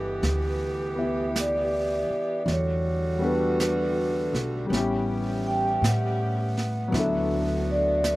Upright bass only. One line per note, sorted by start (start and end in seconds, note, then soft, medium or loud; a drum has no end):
0.00 0.18 G1 medium
0.23 2.05 D2 medium
2.10 muted upright bass stroke soft
2.46 4.28 E2 medium
4.33 4.68 B1 medium
4.70 5.78 A1 medium
5.82 6.89 A2 medium
6.92 8.16 D2 medium